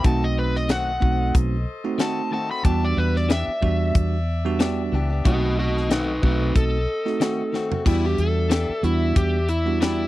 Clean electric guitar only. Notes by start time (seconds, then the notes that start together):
0.04 D#3 A3 C4 F#4
0.69 D#3 A3 C4 F#4
1.98 D#3 A3 C4 F#4
2.31 D#3 A3 C4 F#4
2.49 A3 C4 F#4
2.64 E3 B3 D4 G4
3.29 E3 B3 D4 G4
4.59 E3 B3 D4 G4
4.92 E3 B3 D4 G4
5.10 B3 D4 G4
5.24 D#3 A3 C4 F#4
5.89 D#3 A3 C4 F#4
7.20 D#3 A3 C4 F#4
7.53 D#3 A3 C4 F#4
7.70 A3 C4 F#4
7.85 E3 B3 D4 G4
8.50 E3 B3 D4 G4
9.80 E3 B3 D4 G4